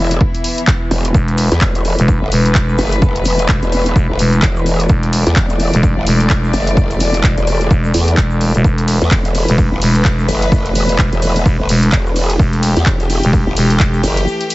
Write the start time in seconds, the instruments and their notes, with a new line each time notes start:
Already playing: wobble bass E1, string section E3 B3 E4
0.11 closed hi-hat
0.21 kick
0.35 closed hi-hat
0.44 open hi-hat
0.58 closed hi-hat
0.67 kick, clap
0.91 wobble bass E1, open hi-hat
1.05 closed hi-hat
1.14 fm bass E1, string section A3 B4, kick, shaker
1.28 closed hi-hat
1.38 open hi-hat, shaker
1.52 wobble bass E2, closed hi-hat, shaker
1.61 wobble bass E1, kick, clap, shaker
1.75 closed hi-hat, shaker
1.85 open hi-hat, shaker
1.99 fm bass E1, closed hi-hat, shaker
2.08 kick, shaker
2.22 wobble bass G1
2.32 fm bass E1, open hi-hat, shaker
2.46 closed hi-hat, shaker
2.55 fm bass E1, kick, clap, shaker
2.69 shaker
2.78 wobble bass F#1, open hi-hat, shaker
2.91 closed hi-hat, shaker
3.02 kick, shaker
3.16 closed hi-hat
3.24 wobble bass E1, open hi-hat, shaker
3.39 closed hi-hat, shaker
3.49 fm bass E1, kick, clap, shaker
3.63 wobble bass E1, closed hi-hat, shaker
3.72 open hi-hat, shaker
3.85 closed hi-hat, shaker
3.96 fm bass E1, kick, shaker
4.09 wobble bass G1
4.19 fm bass E1, open hi-hat, shaker
4.33 closed hi-hat, shaker
4.42 wobble bass E1, kick, clap, shaker
4.56 shaker
4.66 open hi-hat, shaker
4.79 closed hi-hat, shaker
4.89 fm bass E1, string section D5, kick, shaker
5.03 closed hi-hat
5.13 open hi-hat, shaker
5.27 wobble bass E2, closed hi-hat, shaker
5.36 wobble bass E1, kick, clap, shaker
5.49 closed hi-hat, shaker
5.60 open hi-hat, shaker
5.73 fm bass E1, closed hi-hat, shaker
5.83 kick, shaker
5.97 wobble bass G1
6.07 fm bass E1, open hi-hat, shaker
6.20 closed hi-hat, shaker
6.30 fm bass E1, kick, clap, shaker
6.44 shaker
6.53 wobble bass F#1, open hi-hat, shaker
6.67 closed hi-hat, shaker
6.77 kick, shaker
6.91 closed hi-hat, shaker
7.00 wobble bass E1, open hi-hat, shaker
7.14 closed hi-hat, shaker
7.24 fm bass E1, kick, clap, shaker
7.38 wobble bass E1, closed hi-hat, shaker
7.47 open hi-hat, shaker
7.61 closed hi-hat, shaker
7.71 fm bass E1, kick, shaker
7.84 shaker
7.94 wobble bass E2, open hi-hat, shaker
8.08 closed hi-hat, shaker
8.17 fm bass E1, kick, clap, shaker
8.31 shaker
8.41 open hi-hat, shaker
8.55 fm bass E1, closed hi-hat, shaker
8.64 fm bass E1, string section B4, kick, shaker
8.78 closed hi-hat
8.88 open hi-hat, ride, shaker
9.01 wobble bass E2, closed hi-hat, shaker
9.11 wobble bass E1, kick, clap, shaker
9.25 closed hi-hat, shaker
9.35 open hi-hat, ride, shaker
9.48 fm bass E1, closed hi-hat, shaker
9.58 kick, shaker
9.72 wobble bass G1
9.82 fm bass E1, open hi-hat, ride, shaker
9.95 closed hi-hat, shaker
10.05 fm bass E1, kick, clap, shaker
10.19 shaker
10.28 wobble bass F#1, open hi-hat, ride, shaker
10.42 closed hi-hat, shaker
10.52 kick, shaker
10.66 closed hi-hat
10.75 wobble bass E1, open hi-hat, ride, shaker
10.89 closed hi-hat, shaker
10.99 fm bass E1, kick, clap, shaker
11.13 wobble bass E1, closed hi-hat, shaker
11.22 open hi-hat, ride, shaker
11.36 closed hi-hat, shaker
11.46 fm bass E1, kick, shaker
11.59 wobble bass G1
11.69 fm bass E1, open hi-hat, ride, shaker
11.83 closed hi-hat, shaker
11.92 wobble bass E1, kick, clap, shaker
12.06 shaker
12.16 open hi-hat, ride, shaker
12.30 closed hi-hat, shaker
12.39 fm bass E1, string section G4, kick, shaker
12.53 closed hi-hat
12.63 open hi-hat, ride, shaker
12.76 wobble bass E2, closed hi-hat, shaker
12.86 wobble bass E1, kick, clap, shaker
13.00 closed hi-hat, shaker
13.10 open hi-hat, ride, shaker
13.23 fm bass E1, closed hi-hat, shaker
13.33 kick, shaker
13.47 wobble bass G1
13.57 fm bass E1, open hi-hat, ride, shaker
13.70 closed hi-hat, shaker
13.80 fm bass E1, kick, clap, shaker
13.93 shaker
14.03 wobble bass F#1, open hi-hat, ride, shaker
14.17 closed hi-hat, shaker
14.28 shaker
14.41 closed hi-hat
14.50 open hi-hat, ride, shaker